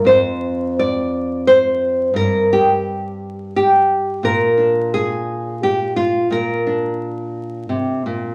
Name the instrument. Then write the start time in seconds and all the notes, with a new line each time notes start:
nylon-string guitar
0.05 F2 C5
0.79 D5
1.47 C5
2.14 G2 A#4
2.53 G4
3.56 G4
4.23 A#2 A#4
4.57 D4
4.94 G#4
5.63 G4
5.96 F4
6.31 A#2 A#4
6.67 D4
7.69 C3
8.06 A#2